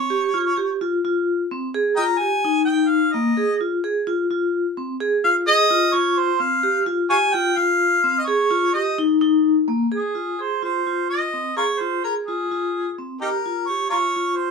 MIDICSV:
0, 0, Header, 1, 3, 480
1, 0, Start_track
1, 0, Tempo, 467290
1, 108, Time_signature, 7, 3, 24, 8
1, 8748, Tempo, 470958
1, 14855, End_track
2, 0, Start_track
2, 0, Title_t, "Harmonica"
2, 0, Program_c, 0, 22
2, 0, Note_on_c, 0, 73, 77
2, 833, Note_off_c, 0, 73, 0
2, 2015, Note_on_c, 0, 75, 71
2, 2015, Note_on_c, 0, 79, 71
2, 2015, Note_on_c, 0, 82, 101
2, 2090, Note_off_c, 0, 75, 0
2, 2105, Note_off_c, 0, 79, 0
2, 2245, Note_on_c, 0, 80, 116
2, 2260, Note_off_c, 0, 82, 0
2, 2713, Note_off_c, 0, 80, 0
2, 2719, Note_on_c, 0, 79, 82
2, 2964, Note_on_c, 0, 77, 77
2, 2979, Note_off_c, 0, 79, 0
2, 3211, Note_on_c, 0, 75, 73
2, 3227, Note_off_c, 0, 77, 0
2, 3698, Note_off_c, 0, 75, 0
2, 5387, Note_on_c, 0, 77, 94
2, 5494, Note_off_c, 0, 77, 0
2, 5621, Note_on_c, 0, 75, 115
2, 6102, Note_on_c, 0, 73, 91
2, 6118, Note_off_c, 0, 75, 0
2, 6348, Note_on_c, 0, 72, 82
2, 6363, Note_off_c, 0, 73, 0
2, 6578, Note_on_c, 0, 77, 92
2, 6593, Note_off_c, 0, 72, 0
2, 7061, Note_off_c, 0, 77, 0
2, 7294, Note_on_c, 0, 73, 76
2, 7294, Note_on_c, 0, 77, 76
2, 7294, Note_on_c, 0, 80, 109
2, 7368, Note_off_c, 0, 73, 0
2, 7384, Note_off_c, 0, 77, 0
2, 7538, Note_on_c, 0, 79, 103
2, 7554, Note_off_c, 0, 80, 0
2, 7777, Note_on_c, 0, 77, 100
2, 7792, Note_off_c, 0, 79, 0
2, 8420, Note_on_c, 0, 75, 62
2, 8435, Note_off_c, 0, 77, 0
2, 8493, Note_on_c, 0, 73, 86
2, 8509, Note_off_c, 0, 75, 0
2, 8970, Note_on_c, 0, 75, 81
2, 8986, Note_off_c, 0, 73, 0
2, 9217, Note_off_c, 0, 75, 0
2, 10208, Note_on_c, 0, 68, 65
2, 10679, Note_on_c, 0, 72, 74
2, 10694, Note_off_c, 0, 68, 0
2, 10904, Note_off_c, 0, 72, 0
2, 10910, Note_on_c, 0, 72, 75
2, 11352, Note_off_c, 0, 72, 0
2, 11376, Note_on_c, 0, 75, 82
2, 11825, Note_off_c, 0, 75, 0
2, 11859, Note_on_c, 0, 65, 57
2, 11859, Note_on_c, 0, 70, 57
2, 11859, Note_on_c, 0, 73, 81
2, 11932, Note_off_c, 0, 65, 0
2, 11944, Note_off_c, 0, 70, 0
2, 12096, Note_on_c, 0, 72, 72
2, 12111, Note_off_c, 0, 73, 0
2, 12332, Note_off_c, 0, 72, 0
2, 12338, Note_on_c, 0, 70, 75
2, 12447, Note_off_c, 0, 70, 0
2, 12566, Note_on_c, 0, 68, 65
2, 13254, Note_off_c, 0, 68, 0
2, 13532, Note_on_c, 0, 63, 55
2, 13532, Note_on_c, 0, 67, 55
2, 13532, Note_on_c, 0, 70, 78
2, 13605, Note_off_c, 0, 63, 0
2, 13614, Note_off_c, 0, 67, 0
2, 14003, Note_on_c, 0, 73, 87
2, 14019, Note_off_c, 0, 70, 0
2, 14228, Note_off_c, 0, 73, 0
2, 14234, Note_on_c, 0, 65, 64
2, 14234, Note_on_c, 0, 70, 64
2, 14234, Note_on_c, 0, 73, 91
2, 14306, Note_off_c, 0, 70, 0
2, 14316, Note_off_c, 0, 65, 0
2, 14707, Note_on_c, 0, 72, 74
2, 14722, Note_off_c, 0, 73, 0
2, 14855, Note_off_c, 0, 72, 0
2, 14855, End_track
3, 0, Start_track
3, 0, Title_t, "Vibraphone"
3, 0, Program_c, 1, 11
3, 105, Note_on_c, 1, 67, 86
3, 282, Note_off_c, 1, 67, 0
3, 347, Note_on_c, 1, 65, 71
3, 523, Note_off_c, 1, 65, 0
3, 591, Note_on_c, 1, 67, 77
3, 766, Note_off_c, 1, 67, 0
3, 835, Note_on_c, 1, 65, 82
3, 1009, Note_off_c, 1, 65, 0
3, 1077, Note_on_c, 1, 65, 76
3, 1426, Note_off_c, 1, 65, 0
3, 1554, Note_on_c, 1, 60, 68
3, 1728, Note_off_c, 1, 60, 0
3, 1792, Note_on_c, 1, 68, 86
3, 1966, Note_off_c, 1, 68, 0
3, 2033, Note_on_c, 1, 65, 72
3, 2207, Note_off_c, 1, 65, 0
3, 2267, Note_on_c, 1, 67, 68
3, 2443, Note_off_c, 1, 67, 0
3, 2512, Note_on_c, 1, 63, 78
3, 2686, Note_off_c, 1, 63, 0
3, 2746, Note_on_c, 1, 63, 73
3, 3099, Note_off_c, 1, 63, 0
3, 3228, Note_on_c, 1, 58, 68
3, 3404, Note_off_c, 1, 58, 0
3, 3465, Note_on_c, 1, 68, 78
3, 3642, Note_off_c, 1, 68, 0
3, 3704, Note_on_c, 1, 65, 73
3, 3881, Note_off_c, 1, 65, 0
3, 3944, Note_on_c, 1, 68, 68
3, 4121, Note_off_c, 1, 68, 0
3, 4181, Note_on_c, 1, 65, 85
3, 4359, Note_off_c, 1, 65, 0
3, 4423, Note_on_c, 1, 65, 74
3, 4776, Note_off_c, 1, 65, 0
3, 4903, Note_on_c, 1, 60, 61
3, 5080, Note_off_c, 1, 60, 0
3, 5142, Note_on_c, 1, 68, 84
3, 5319, Note_off_c, 1, 68, 0
3, 5385, Note_on_c, 1, 65, 72
3, 5561, Note_off_c, 1, 65, 0
3, 5617, Note_on_c, 1, 68, 70
3, 5796, Note_off_c, 1, 68, 0
3, 5859, Note_on_c, 1, 65, 85
3, 6037, Note_off_c, 1, 65, 0
3, 6097, Note_on_c, 1, 65, 74
3, 6452, Note_off_c, 1, 65, 0
3, 6574, Note_on_c, 1, 60, 72
3, 6754, Note_off_c, 1, 60, 0
3, 6814, Note_on_c, 1, 67, 85
3, 6995, Note_off_c, 1, 67, 0
3, 7051, Note_on_c, 1, 65, 79
3, 7232, Note_off_c, 1, 65, 0
3, 7294, Note_on_c, 1, 67, 70
3, 7474, Note_off_c, 1, 67, 0
3, 7542, Note_on_c, 1, 65, 81
3, 7719, Note_off_c, 1, 65, 0
3, 7777, Note_on_c, 1, 65, 72
3, 8134, Note_off_c, 1, 65, 0
3, 8255, Note_on_c, 1, 60, 70
3, 8436, Note_off_c, 1, 60, 0
3, 8502, Note_on_c, 1, 68, 89
3, 8680, Note_off_c, 1, 68, 0
3, 8738, Note_on_c, 1, 65, 80
3, 8917, Note_off_c, 1, 65, 0
3, 8986, Note_on_c, 1, 67, 69
3, 9162, Note_off_c, 1, 67, 0
3, 9225, Note_on_c, 1, 63, 88
3, 9401, Note_off_c, 1, 63, 0
3, 9458, Note_on_c, 1, 63, 84
3, 9812, Note_off_c, 1, 63, 0
3, 9933, Note_on_c, 1, 58, 72
3, 10112, Note_off_c, 1, 58, 0
3, 10174, Note_on_c, 1, 68, 66
3, 10353, Note_off_c, 1, 68, 0
3, 10413, Note_on_c, 1, 65, 55
3, 10592, Note_off_c, 1, 65, 0
3, 10660, Note_on_c, 1, 68, 49
3, 10836, Note_off_c, 1, 68, 0
3, 10898, Note_on_c, 1, 65, 62
3, 11075, Note_off_c, 1, 65, 0
3, 11144, Note_on_c, 1, 65, 61
3, 11496, Note_off_c, 1, 65, 0
3, 11621, Note_on_c, 1, 60, 52
3, 11798, Note_off_c, 1, 60, 0
3, 11858, Note_on_c, 1, 68, 70
3, 12035, Note_off_c, 1, 68, 0
3, 12099, Note_on_c, 1, 65, 63
3, 12277, Note_off_c, 1, 65, 0
3, 12339, Note_on_c, 1, 68, 54
3, 12517, Note_off_c, 1, 68, 0
3, 12585, Note_on_c, 1, 65, 66
3, 12760, Note_off_c, 1, 65, 0
3, 12822, Note_on_c, 1, 65, 63
3, 13176, Note_off_c, 1, 65, 0
3, 13304, Note_on_c, 1, 60, 54
3, 13480, Note_off_c, 1, 60, 0
3, 13542, Note_on_c, 1, 67, 70
3, 13719, Note_off_c, 1, 67, 0
3, 13782, Note_on_c, 1, 65, 62
3, 13960, Note_off_c, 1, 65, 0
3, 14026, Note_on_c, 1, 67, 58
3, 14202, Note_off_c, 1, 67, 0
3, 14261, Note_on_c, 1, 65, 63
3, 14439, Note_off_c, 1, 65, 0
3, 14502, Note_on_c, 1, 65, 66
3, 14855, Note_off_c, 1, 65, 0
3, 14855, End_track
0, 0, End_of_file